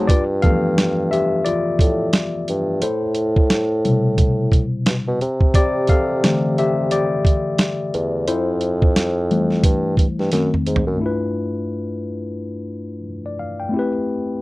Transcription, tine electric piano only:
0.00 0.11 A3 medium
0.00 0.10 D#4 medium
0.00 0.10 F#4 medium
0.00 0.11 G#4 medium
0.00 0.10 C5 medium
0.07 0.25 F4 medium
0.07 0.23 D5 loud
0.42 1.42 E3 medium
0.42 1.41 F3 soft
0.42 1.41 A3 soft
0.42 1.42 B3 soft
0.42 1.08 A4 medium
0.42 1.13 F5 loud
1.11 1.44 G4 medium
1.11 1.46 E5 medium
1.45 2.78 F4 medium
1.45 2.85 D5 medium
2.82 4.83 E4 medium
2.82 4.82 C5 medium
3.85 4.33 B2 medium
3.85 4.32 C3 medium
3.85 4.32 G3 medium
5.55 5.87 G4 medium
5.55 5.90 D5 loud
5.89 6.54 A4 medium
5.89 6.59 F5 medium
6.24 6.71 D3 medium
6.24 6.72 E3 medium
6.24 6.72 A3 medium
6.59 6.90 G4 medium
6.59 6.89 E5 medium
6.92 8.24 G4 medium
6.92 8.32 D5 medium
8.28 10.28 E4 medium
8.28 10.28 C5 medium
9.31 10.28 E3 medium
9.31 10.28 G3 soft
9.31 10.29 A3 medium
10.33 10.80 D#3 soft
10.33 10.80 A3 soft
10.33 10.81 C4 medium
10.96 12.98 G2 medium
10.96 12.99 A3 medium
10.96 13.00 D4 medium
11.01 13.01 E4 medium
11.01 13.02 F4 medium
11.06 13.03 B4 medium
13.26 13.38 D5 soft
13.39 13.58 F5 medium
13.60 13.92 G5 soft
13.69 14.42 A3 medium
13.69 14.42 C4 medium
13.74 14.42 E4 medium
13.74 14.42 G4 medium
13.79 14.42 B4 medium

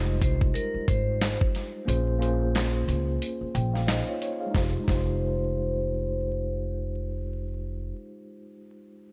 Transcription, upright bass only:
0.00 0.17 F1 loud
0.22 0.49 C2 medium
0.74 muted upright bass stroke soft
0.88 1.32 G#1 medium
1.88 2.84 A#1 loud
2.88 3.16 C#2 loud
3.41 muted upright bass stroke soft
3.55 3.99 A#1 loud
4.55 4.75 F1 loud
4.88 7.91 F1 medium

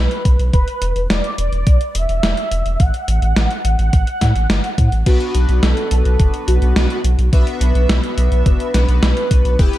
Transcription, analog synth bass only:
0.25 0.36 B1 medium
0.39 0.50 B1 medium
0.54 0.64 E1 loud
0.82 0.93 E1 loud
0.96 1.07 E1 medium
1.10 1.21 E1 loud
1.38 1.49 E1 loud
1.52 1.63 E1 medium
1.67 1.78 B1 loud
1.95 2.06 E1 loud
2.09 2.20 E1 medium
2.23 2.34 E1 loud
2.52 2.62 E1 medium
2.66 2.77 E1 medium
2.80 2.91 A1 loud
3.08 3.19 A1 loud
3.22 3.33 A1 medium
3.36 3.47 A1 loud
3.65 3.76 A1 medium
3.79 3.90 A1 medium
3.93 4.04 A1 loud
4.21 4.32 A2 medium
4.35 4.46 A1 medium
4.50 4.60 G1 loud
4.78 4.89 A2 medium
4.92 5.03 A1 medium
5.06 5.17 B1 medium
5.35 5.46 B1 medium
5.49 5.60 B1 medium
5.63 5.74 B1 loud
5.91 6.02 B1 medium
6.05 6.16 B1 medium
6.20 6.30 F#1 loud
6.48 6.59 B1 medium
6.62 6.73 B1 medium
6.76 6.87 B1 loud
7.04 7.15 B1 loud
7.18 7.29 B1 medium
7.33 7.44 B1 loud
7.61 7.72 B1 medium
7.75 7.86 B1 medium
7.89 8.00 B1 loud
8.18 8.28 B1 medium
8.32 8.43 B1 medium
8.46 8.57 F#1 loud
8.74 8.85 B1 medium
8.89 8.99 B1 medium
9.03 9.13 B1 loud
9.31 9.42 B1 medium
9.45 9.56 B1 medium
9.59 9.70 E1 loud

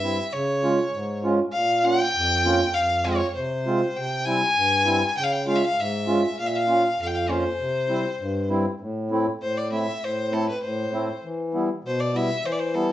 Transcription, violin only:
0.00 0.34 E5 loud
0.33 1.24 C#5 medium
1.52 1.86 F5 loud
1.85 2.75 G5 loud
2.74 3.06 F5 loud
3.04 3.35 C#5 loud
3.36 3.98 C5 medium
3.97 4.26 G5 loud
4.25 5.17 G#5 loud
5.17 5.25 G5 medium
5.24 5.34 F5 medium
5.32 5.47 G5 medium
5.48 5.57 F5 loud
5.56 5.66 E5 medium
5.64 5.82 F5 loud
5.80 6.39 E5 medium
6.39 6.48 F5 medium
6.47 6.57 E5 medium
6.55 7.00 F5 loud
7.01 7.08 F5 medium
7.07 7.17 G5 medium
7.15 7.32 F5 medium
7.31 8.51 C5 medium
9.42 9.59 C5 medium
9.57 9.72 D5 medium
9.73 10.06 E5 medium
10.04 10.35 C5 medium
10.33 10.48 A4 medium
10.49 10.62 B4 medium
10.63 11.19 C5 medium
11.87 12.02 C5 medium
12.00 12.18 D5 medium
12.16 12.47 E5 medium
12.46 12.54 C5 medium
12.52 12.61 D5 medium
12.59 12.76 C5 medium
12.75 12.92 A4 medium

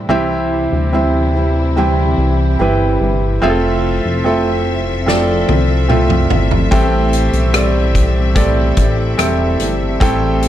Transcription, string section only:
0.09 3.39 C3 medium
0.09 3.39 E3 medium
0.09 3.39 G3 medium
0.09 3.39 E4 medium
3.42 6.68 F3 medium
3.42 10.48 A3 medium
3.42 10.48 C4 medium
3.42 10.48 E5 medium
6.73 10.48 G3 medium

